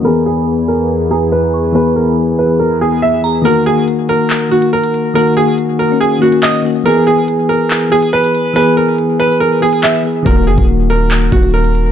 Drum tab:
HH |----------------|----------------|x-x-x-x----x-xx-|x-x-x-x----xx-o-|
CP |----------------|----------------|--------x-------|------------x---|
BD |----------------|----------------|----------------|----------------|

HH |x-x-x-x----x-xx-|x-x-x-x----xx-o-|x-x-x-x----x-xx-|
CP |--------x-------|------------x---|--------x-------|
BD |----------------|----------------|o--o------o-----|